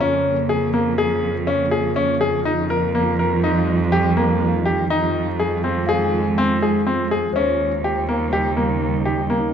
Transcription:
0.00 2.44 F2 medium
0.00 2.42 C#3 medium
0.00 2.42 A#3 medium
0.00 0.36 C#4 medium
0.00 7.31 F4 medium
0.00 1.36 A#5 soft
0.49 0.67 G#4 medium
0.74 0.91 A#3 medium
0.98 1.34 G#4 medium
1.47 1.65 C#4 medium
1.71 1.89 G#4 medium
1.96 2.14 C#4 medium
2.21 2.38 G#4 medium
2.44 4.89 F2 medium
2.44 7.30 D#3 medium
2.44 4.87 G3 medium
2.44 2.63 D#4 medium
2.70 2.88 A#4 medium
2.95 3.12 A#3 medium
3.19 3.37 A#4 medium
3.44 3.79 D#4 medium
3.92 4.10 G4 medium
4.17 4.52 A#3 medium
4.66 4.83 G4 medium
4.89 7.30 F2 medium
4.89 7.32 G#3 medium
4.89 5.26 D#4 medium
5.39 5.57 G#4 medium
5.64 5.81 C4 medium
5.87 6.24 G#4 medium
5.87 7.24 F5 medium
6.05 7.39 G#5 soft
6.38 6.55 C4 medium
6.62 6.80 G#4 medium
6.87 7.04 C4 medium
7.11 7.29 G#4 medium
7.33 9.54 D#2 medium
7.33 9.54 C#3 medium
7.33 9.54 G3 medium
7.33 7.71 C#4 medium
7.33 9.54 D#4 medium
7.33 8.70 C5 medium
7.84 8.02 G4 medium
8.09 8.26 A#3 medium
8.33 8.50 G4 medium
8.57 8.92 A#3 medium
9.05 9.23 G4 medium
9.30 9.48 A#3 medium

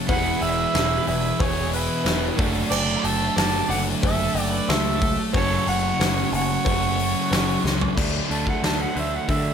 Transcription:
0.07 0.33 E1 medium
0.07 1.38 E2 loud
0.07 1.39 B2 medium
0.07 2.36 E3 medium
0.07 2.37 E3 medium
0.07 2.37 G#3 medium
0.07 2.36 B3 medium
0.07 2.37 B3 medium
0.07 2.37 E4 medium
0.07 2.37 G#4 medium
0.07 2.38 G#4 loud
0.07 0.40 B4 medium
0.07 0.44 F#5 loud
0.07 kick loud
0.07 open hi-hat medium
0.07 cowbell medium
0.11 1.40 E3 loud
0.41 0.65 E1 medium
0.41 1.07 B4 medium
0.41 1.07 E5 loud
0.41 open hi-hat medium
0.74 0.98 E1 medium
0.74 snare loud
0.74 open hi-hat medium
0.74 cowbell medium
1.07 1.31 E1 medium
1.07 1.40 B4 medium
1.07 1.42 E5 medium
1.07 open hi-hat medium
1.39 1.88 E1 medium
1.39 2.36 E2 medium
1.39 2.37 B2 medium
1.39 2.38 E3 medium
1.39 1.73 G#4 medium
1.39 1.73 C#5 medium
1.39 kick loud
1.39 open hi-hat medium
1.39 cowbell medium
1.73 2.37 E4 medium
1.73 2.35 B4 medium
1.73 open hi-hat medium
2.04 2.29 E1 medium
2.04 snare loud
2.04 open hi-hat medium
2.04 cowbell medium
2.37 2.63 F#1 medium
2.37 3.68 D3 medium
2.37 5.32 F#3 medium
2.37 3.70 A3 medium
2.37 5.32 A3 medium
2.37 3.68 D4 loud
2.37 5.36 F#4 medium
2.37 kick loud
2.37 open hi-hat medium
2.41 5.32 F#3 medium
2.41 5.32 D4 medium
2.41 5.33 A4 medium
2.69 2.95 F#1 medium
2.69 3.04 A4 medium
2.69 3.06 D5 loud
2.69 cowbell medium
2.69 crash loud
3.04 3.28 F#1 medium
3.04 3.36 E5 medium
3.04 3.36 A5 medium
3.04 open hi-hat medium
3.36 3.61 F#1 medium
3.36 3.67 D5 medium
3.36 3.68 A5 loud
3.36 snare loud
3.36 open hi-hat medium
3.36 cowbell medium
3.68 3.93 F#1 loud
3.68 5.00 D3 medium
3.68 5.36 A3 medium
3.68 4.99 D4 medium
3.68 3.77 D5 medium
3.68 3.85 F#5 medium
3.68 open hi-hat medium
4.02 4.27 F#1 medium
4.02 4.50 A4 medium
4.02 4.41 E5 loud
4.02 kick loud
4.02 open hi-hat medium
4.02 cowbell medium
4.35 4.59 F#1 medium
4.35 open hi-hat medium
4.41 4.54 D5 loud
4.50 4.69 B4 medium
4.50 4.71 D5 medium
4.68 5.16 C#2 loud
4.68 5.18 A4 medium
4.68 5.19 E5 loud
4.68 snare loud
4.68 open hi-hat medium
4.68 cowbell medium
5.02 kick loud
5.02 open hi-hat medium
5.33 5.58 F#1 medium
5.33 6.63 F#2 loud
5.33 6.64 C#3 medium
5.33 7.94 F#3 medium
5.33 6.65 F#3 loud
5.33 7.94 A3 medium
5.33 7.95 A3 medium
5.33 7.94 C#4 medium
5.33 7.96 C#4 medium
5.33 7.96 F#4 loud
5.33 5.66 A4 medium
5.33 5.65 C#5 loud
5.33 7.94 G#5 medium
5.33 kick loud
5.33 open hi-hat medium
5.33 cowbell loud
5.67 5.91 F#1 medium
5.67 6.30 C#5 medium
5.67 6.29 F#5 loud
5.67 open hi-hat medium
6.00 6.24 F#1 medium
6.00 snare loud
6.00 open hi-hat medium
6.00 cowbell medium
6.32 6.56 F#1 loud
6.32 7.61 F#5 medium
6.32 open hi-hat medium
6.36 7.62 C#5 medium
6.65 7.14 F#1 medium
6.65 7.95 F#2 medium
6.65 7.95 C#3 medium
6.65 7.96 F#3 medium
6.65 kick loud
6.65 open hi-hat medium
6.65 cowbell loud
6.99 open hi-hat medium
7.31 7.55 F#1 medium
7.31 snare loud
7.31 open hi-hat medium
7.31 cowbell medium
7.64 7.88 C#2 medium
7.64 snare medium
7.81 floor tom medium
7.96 8.19 D2 medium
7.96 8.28 D3 loud
7.96 8.29 F#3 medium
7.96 8.29 A3 medium
7.96 8.29 D4 loud
7.96 kick loud
7.96 crash loud
8.30 8.51 D2 medium
8.30 8.62 D3 medium
8.30 8.63 F#3 medium
8.30 8.62 A3 medium
8.30 8.63 D4 medium
8.30 8.46 A5 medium
8.30 open hi-hat medium
8.47 8.63 F#5 medium
8.47 kick medium
8.63 8.84 D2 medium
8.63 8.94 D3 medium
8.63 8.95 F#3 medium
8.63 8.94 A3 medium
8.63 8.95 D4 medium
8.63 8.79 A5 medium
8.63 snare loud
8.63 open hi-hat medium
8.81 8.96 F#5 medium
8.95 9.17 D2 medium
8.95 9.27 D3 medium
8.95 9.27 F#3 medium
8.95 9.27 A3 medium
8.95 9.28 D4 loud
8.95 open hi-hat medium
8.99 9.17 E5 medium
9.15 9.29 F#5 medium
9.28 9.54 D3 medium
9.28 9.50 D3 medium
9.28 9.54 F#3 medium
9.28 9.54 A3 medium
9.28 9.54 D4 medium
9.28 9.54 E5 medium
9.28 kick loud
9.28 open hi-hat medium

